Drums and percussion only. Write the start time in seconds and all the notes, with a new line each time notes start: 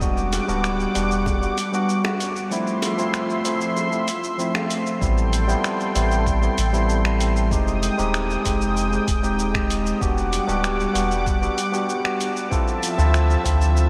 0.01 kick, shaker
0.17 shaker
0.33 closed hi-hat, high bongo, shaker
0.49 shaker
0.64 finger snap, shaker
0.80 shaker
0.95 closed hi-hat, shaker
1.11 shaker
1.26 kick, high bongo, shaker
1.43 shaker
1.58 closed hi-hat, shaker
1.74 shaker
1.89 shaker
2.04 finger snap, high bongo, shaker
2.20 closed hi-hat, shaker
2.36 shaker
2.52 shaker
2.67 shaker
2.82 closed hi-hat, high bongo, shaker
2.99 shaker
3.14 finger snap, shaker
3.30 shaker
3.45 closed hi-hat, shaker
3.61 shaker
3.77 high bongo, shaker
3.92 shaker
4.08 closed hi-hat, shaker
4.24 shaker
4.39 shaker
4.55 finger snap, high bongo, shaker
4.70 closed hi-hat, shaker
4.86 shaker
5.01 kick, shaker
5.18 shaker
5.33 closed hi-hat, shaker
5.49 shaker
5.64 finger snap, shaker
5.80 shaker
5.95 closed hi-hat, shaker
6.11 shaker
6.26 kick, shaker
6.43 shaker
6.58 closed hi-hat, shaker
6.74 shaker
6.89 shaker
7.05 finger snap, shaker
7.20 closed hi-hat, shaker
7.36 shaker
7.51 kick, shaker
7.68 shaker
7.83 closed hi-hat, shaker
7.99 shaker
8.14 finger snap, shaker
8.30 shaker
8.45 kick, closed hi-hat, shaker
8.61 shaker
8.77 shaker
8.93 shaker
9.08 kick, closed hi-hat, shaker
9.24 shaker
9.39 shaker
9.55 finger snap, kick, shaker
9.70 closed hi-hat, shaker
9.86 shaker
10.01 kick, shaker
10.18 shaker
10.33 closed hi-hat, shaker
10.49 shaker
10.64 finger snap, shaker
10.80 shaker
10.95 closed hi-hat, shaker
11.11 shaker
11.27 kick, shaker
11.43 shaker
11.58 closed hi-hat, shaker
11.74 shaker
11.90 shaker
12.05 finger snap, shaker
12.21 closed hi-hat, shaker
12.37 shaker
12.52 kick, shaker
12.68 shaker
12.83 closed hi-hat, shaker
12.99 shaker
13.14 finger snap, shaker
13.30 shaker
13.45 kick, closed hi-hat, shaker
13.61 shaker
13.77 shaker